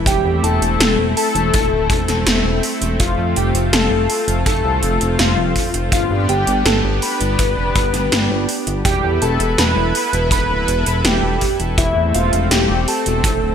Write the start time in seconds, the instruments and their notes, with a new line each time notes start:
Already playing: analog synth pad E4
0.06 analog synth bass E1, analog synth pad A3 C4, analog polysynth G4, synth bell G5, kick, closed hi-hat
0.25 analog synth bass E2
0.43 analog synth bass E1, analog polysynth A4, synth bell A5, closed hi-hat
0.62 analog synth bass E1, closed hi-hat
0.80 analog synth bass E1, snare, closed hi-hat
0.98 analog synth bass E1
1.17 analog polysynth A4, synth bell A5, open hi-hat
1.35 analog synth bass E1, closed hi-hat
1.54 analog synth bass E1, kick, closed hi-hat
1.72 analog synth bass D1
1.90 analog synth bass E1, kick, closed hi-hat
2.08 analog synth bass E1, snare, closed hi-hat
2.26 analog synth bass E1, snare, closed hi-hat
2.45 analog synth bass E1
2.63 open hi-hat
2.81 analog synth bass E1, closed hi-hat
3.00 analog synth bass F1, analog synth pad F4, analog polysynth F4, synth bell F5, kick, closed hi-hat
3.18 analog synth bass F2
3.36 analog synth bass F1, analog polysynth G4, synth bell G5, closed hi-hat
3.55 analog synth bass F1, closed hi-hat
3.73 analog synth bass F1, analog polysynth A4, synth bell A5, snare, closed hi-hat
3.91 analog synth bass F1
4.10 open hi-hat
4.28 analog synth bass F1, closed hi-hat
4.46 analog synth bass F1, analog polysynth A4, synth bell A5, kick, closed hi-hat
4.65 analog synth bass C2
4.83 analog synth bass F1, closed hi-hat
5.01 analog synth bass F1, closed hi-hat
5.19 analog synth bass F1, analog polysynth F4, synth bell F5, snare, closed hi-hat
5.38 analog synth bass F1
5.56 kick, open hi-hat
5.74 analog synth bass F1, closed hi-hat
5.92 analog synth bass G1, analog synth pad B3 D4 G4, analog polysynth F4, synth bell F5, kick, closed hi-hat
6.11 analog synth bass G2
6.29 analog synth bass G1, analog polysynth G4, synth bell G5, closed hi-hat
6.47 analog synth bass G1, closed hi-hat
6.66 analog synth bass G1, analog polysynth A4, synth bell A5, snare, closed hi-hat
6.84 analog synth bass G1
7.02 analog polysynth B4, synth bell B5, open hi-hat
7.20 analog synth bass G1, closed hi-hat
7.39 analog synth bass G1, kick, closed hi-hat
7.57 analog synth bass F1
7.76 analog synth bass G1, kick, closed hi-hat
7.94 analog synth bass G1, snare, closed hi-hat
8.12 analog synth bass G1, snare, closed hi-hat
8.30 analog synth bass G1
8.49 open hi-hat
8.67 analog synth bass G1, closed hi-hat
8.85 analog synth bass E1, analog synth pad E4 A4 B4, analog polysynth G4, synth bell G5, kick, closed hi-hat
9.03 analog synth bass E2
9.22 analog synth bass E1, analog polysynth A4, synth bell A5, closed hi-hat
9.40 analog synth bass E1, closed hi-hat
9.58 analog synth bass E1, analog polysynth B4, synth bell B5, snare, closed hi-hat
9.76 analog synth bass E1
9.95 open hi-hat
10.13 analog synth bass E1, closed hi-hat
10.31 analog synth bass E1, analog polysynth B4, synth bell B5, kick, closed hi-hat
10.50 analog synth bass D1
10.68 analog synth bass E1, closed hi-hat
10.86 analog synth bass E1, closed hi-hat
11.05 analog synth bass E1, analog polysynth G4, synth bell G5, snare, closed hi-hat
11.23 analog synth bass E1
11.41 kick, open hi-hat
11.60 analog synth bass E1, closed hi-hat
11.78 analog synth bass E1, analog synth pad A3 C4, analog polysynth E4, synth bell E5, kick, closed hi-hat
11.96 analog synth bass E2
12.14 analog synth bass E1, analog polysynth F4, synth bell F5, closed hi-hat
12.33 analog synth bass E1, closed hi-hat
12.51 analog synth bass E1, analog polysynth G4, synth bell G5, snare, closed hi-hat
12.70 analog synth bass E1
12.88 analog polysynth A4, synth bell A5, open hi-hat
13.06 analog synth bass E1, closed hi-hat
13.24 analog synth bass E1, kick, closed hi-hat
13.43 analog synth bass D1